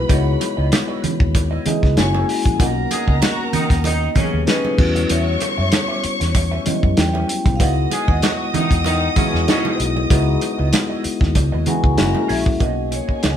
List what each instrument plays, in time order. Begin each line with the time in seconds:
Already playing: tine electric piano G#3 B3 D#4 E4 F#4, vibraphone B4, violin section B4 B5
0.09 fingered electric bass C#2, tine electric piano G#3 B3 D#4 E4 F#4, clean electric guitar E4 F#4 B4 D#5, vibraphone C#5, kick, closed hi-hat, muted conga
0.40 muted clean electric guitar stroke, closed hi-hat, muted conga
0.57 fingered electric bass C#2, clean electric guitar E4 F#4 B4 D#5
0.72 muted clean electric guitar stroke, snare, closed hi-hat, high conga
0.88 clean electric guitar E4 F#4 B4 D#5
1.03 muted clean electric guitar stroke, muted fingered electric bass stroke, closed hi-hat, low conga
1.20 fingered electric bass D#2, muted clean electric guitar stroke, kick
1.35 muted clean electric guitar stroke, kick, closed hi-hat, muted conga
1.51 clean electric guitar E4 F#4 B4 D#5
1.65 tine electric piano G#3 B3 D#4 E4 G#4, vibraphone D#5, muted clean electric guitar stroke, muted fingered electric bass stroke, closed hi-hat, muted conga, low conga
1.82 fingered electric bass C#2, muted clean electric guitar stroke, kick, snare
1.97 fingered electric bass F#1, tine electric piano G#3 A#3 C#4 E4 F#4, violin section C#5 C#6, vibraphone G#5, muted clean electric guitar stroke, snare, closed hi-hat, high conga
2.13 clean electric guitar A#3 E4 G#4 C#5, violin section B3 B4, high conga
2.21 violin section C#4 C#5
2.28 violin section D#4 D#5, muted clean electric guitar stroke, open hi-hat
2.37 violin section E4 E5
2.45 fingered electric bass A#1, violin section F#4 F#5, muted clean electric guitar stroke, kick, closed hi-hat
2.52 violin section G#4 G#5
2.59 fingered electric bass B1, tine electric piano A#3 B3 C#4 D#4 F4, clean electric guitar D#4 F#4 A#4 D#5, violin section A#4 A#5, vibraphone F#5, kick, closed hi-hat, muted conga
2.67 tine electric piano F#4
2.91 horn section G#3 G#4, muted clean electric guitar stroke, closed hi-hat, muted conga
3.08 fingered electric bass C#2, clean electric guitar D#4 F#4 A#4 D#5, kick
3.22 horn section F#3 F#4, clean electric guitar D#4 F#4 A#4 D#5, snare, closed hi-hat, high conga
3.40 muted clean electric guitar stroke
3.53 horn section D#3 D#4, clean electric guitar D#4 F#4 A#4 F#5, muted fingered electric bass stroke, closed hi-hat, low conga
3.70 fingered electric bass D#2, muted clean electric guitar stroke, kick, snare, closed hi-hat
3.84 horn section D#3 D#4, clean electric guitar D#4 F#4 A#4 D#5, vibraphone D#5, closed hi-hat, muted conga
4.02 muted clean electric guitar stroke
4.15 horn section C#3 C#4, tine electric piano F#3 B3 C#4 D#4 G4, clean electric guitar D#4 F#4 A#4 D#5, vibraphone C#5, muted fingered electric bass stroke, kick, closed hi-hat, low conga
4.23 tine electric piano G#4
4.33 fingered electric bass D#2, muted clean electric guitar stroke
4.47 horn section C#3 C#4, clean electric guitar D#4 F#4 A#4 D#5, vibraphone B4, snare, closed hi-hat, high conga
4.65 high conga
4.78 fingered electric bass E2, tine electric piano G3 B3 C#4 E4 F#4, violin section C#5 C#6, muted clean electric guitar stroke, kick, crash
4.95 muted clean electric guitar stroke, closed hi-hat, high conga
5.09 fingered electric bass E2, clean electric guitar C#4 G4 B4 E5, vibraphone C#5, closed hi-hat, muted conga
5.40 muted clean electric guitar stroke, closed hi-hat, muted conga
5.58 fingered electric bass F#2, clean electric guitar C#4 G4 B4 E5
5.72 snare, closed hi-hat, high conga
5.88 clean electric guitar C#4 G4 B4 E5
6.03 muted clean electric guitar stroke, muted fingered electric bass stroke, closed hi-hat
6.20 fingered electric bass E2, muted clean electric guitar stroke, snare, closed hi-hat
6.35 muted clean electric guitar stroke, kick, closed hi-hat, muted conga
6.51 clean electric guitar C#4 G4 B4 E5
6.66 tine electric piano F#3 G3 B3 C#4 E4, vibraphone D#5, muted clean electric guitar stroke, muted fingered electric bass stroke, closed hi-hat, muted conga, low conga
6.83 fingered electric bass F#2, muted clean electric guitar stroke, kick
6.97 fingered electric bass E2, vibraphone G5, muted clean electric guitar stroke, snare, closed hi-hat, high conga
7.13 clean electric guitar C#4 G4 B4 E5, high conga
7.28 muted clean electric guitar stroke, closed hi-hat
7.45 fingered electric bass B1, muted clean electric guitar stroke, kick, closed hi-hat, high conga
7.56 tine electric piano G#3 B3, clean electric guitar E4, violin section D#5, vibraphone F5
7.60 fingered electric bass C#2, tine electric piano D#4 E4 F#4, clean electric guitar F#4 B4 D#5, vibraphone F#5, violin section D#6, kick, closed hi-hat, muted conga
7.91 horn section G#3 G#4, vibraphone G#5, muted clean electric guitar stroke, closed hi-hat, muted conga
8.08 fingered electric bass D#2, clean electric guitar E4 F#4 B4 D#5, vibraphone F#5, kick
8.22 horn section F#3 F#4, clean electric guitar E4 F#4 B4 D#5, snare, closed hi-hat, high conga
8.53 horn section D#3 D#4, clean electric guitar E4 F#4 B4 E5, muted fingered electric bass stroke, closed hi-hat, low conga
8.71 fingered electric bass E2, muted clean electric guitar stroke, kick, closed hi-hat
8.84 horn section D#3 D#4, clean electric guitar E4 F#4 B4 D#5, closed hi-hat, muted conga
9.04 muted clean electric guitar stroke
9.16 horn section C#3 C#4, tine electric piano G#3 B3 D#4 E4 F#4, clean electric guitar E4 F#4 B4 D#5, muted fingered electric bass stroke, kick, closed hi-hat, muted conga, low conga
9.33 fingered electric bass E2, muted clean electric guitar stroke, snare
9.47 horn section C#3 C#4, clean electric guitar E4 F#4 B4 D#5, snare, closed hi-hat, high conga
9.65 high conga
9.79 fingered electric bass B1, muted clean electric guitar stroke, closed hi-hat
9.96 muted clean electric guitar stroke, high conga
10.10 fingered electric bass C#2, tine electric piano G#3 B3 D#4 E4 F#4, clean electric guitar E4 F#4 B4 D#5, kick, closed hi-hat, muted conga
10.41 muted clean electric guitar stroke, closed hi-hat, muted conga
10.58 fingered electric bass C#2, clean electric guitar E4 F#4 B4 D#5
10.73 muted clean electric guitar stroke, snare, closed hi-hat, high conga
10.90 clean electric guitar E4 F#4 B4 D#5
11.04 muted clean electric guitar stroke, muted fingered electric bass stroke, closed hi-hat
11.21 fingered electric bass D#2, muted clean electric guitar stroke, kick, snare
11.35 fingered electric bass C#2, muted clean electric guitar stroke, kick, closed hi-hat, muted conga
11.52 fingered electric bass D#2, clean electric guitar E4 F#4 B4 D#5
11.66 tine electric piano G#3 B3 D#4 E4 F#4, vibraphone G#5, muted clean electric guitar stroke, closed hi-hat, muted conga, low conga
11.83 fingered electric bass C#2, muted clean electric guitar stroke, kick
11.97 fingered electric bass F#1, tine electric piano G#3 A#3 C#4 E4 F#4, violin section A#4 A#5, muted clean electric guitar stroke, snare, closed hi-hat, high conga
12.14 muted clean electric guitar stroke, high conga
12.28 fingered electric bass A#1, clean electric guitar A#3 E4 G#4 C#5, vibraphone E5, open hi-hat
12.46 muted clean electric guitar stroke, kick, high conga
12.60 fingered electric bass B1, tine electric piano A#3 B3 C#4 D#4 F#4, clean electric guitar B3 F#4 A#4 D#5, violin section G#4 G#5, vibraphone D#5, kick, closed hi-hat, muted conga
12.91 vibraphone C#5, muted clean electric guitar stroke, closed hi-hat, muted conga
13.08 clean electric guitar B3 F#4 A#4 D#5, muted fingered electric bass stroke, kick
13.22 fingered electric bass C#2, clean electric guitar B3 F#4 A#4 D#5, snare, closed hi-hat, high conga